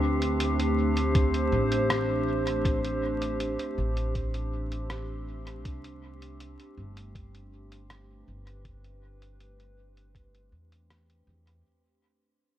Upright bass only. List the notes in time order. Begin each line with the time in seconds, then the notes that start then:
Already playing: D2
1.52 A1
3.78 A1
5.65 C2
6.78 G1
8.28 G1
10.52 E2
11.27 E2